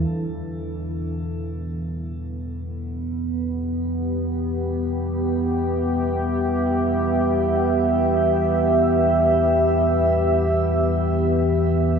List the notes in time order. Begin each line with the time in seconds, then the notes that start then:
Already playing: A2 G3 D4 A4
0.07 E2 E3 B3
2.32 G4
4.02 E5